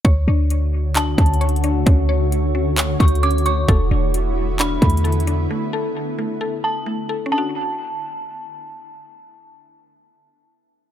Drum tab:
HH |x-----x-----x--xxxxxxx--|x-----x-----x--xxxxxxx--|x-----x-----x--xxxxxxx--|------------------------|
CP |------------x-----------|------------x-----------|------------x-----------|------------------------|
BD |o--------------o--------|o--------------o--------|o--------------o--------|------------------------|

HH |------------------------|------------------------|
CP |------------------------|------------------------|
BD |------------------------|------------------------|